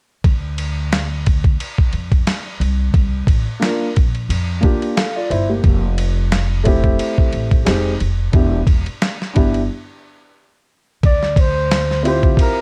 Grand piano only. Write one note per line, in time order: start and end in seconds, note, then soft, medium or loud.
3.60 3.86 A#3 medium
3.60 3.86 D4 medium
3.60 3.87 F4 medium
3.60 3.87 A#4 medium
4.61 4.95 A#3 medium
4.61 4.96 D4 medium
4.61 4.97 F4 medium
4.61 4.97 G4 medium
4.97 5.15 A4 soft
4.97 5.15 F5 medium
5.16 5.30 F4 medium
5.16 5.29 D5 medium
5.30 5.49 E4 medium
5.30 5.48 C5 medium
5.49 5.81 A#3 soft
5.49 5.81 G4 medium
6.64 7.60 A3 medium
6.64 7.60 C4 medium
6.64 7.61 E4 medium
6.64 7.61 G4 medium
7.65 7.90 G#3 medium
7.65 7.91 C4 medium
7.65 7.92 D#4 medium
7.65 7.92 G4 medium
8.32 8.58 B3 medium
8.32 8.58 D4 medium
8.32 8.59 E4 medium
8.32 8.59 G4 medium
9.33 9.59 B3 medium
9.33 9.60 D4 medium
9.33 9.60 E4 medium
9.33 9.61 G4 medium
12.03 12.61 C4 medium
12.03 12.61 E4 medium
12.03 12.61 F4 medium
12.03 12.61 G4 medium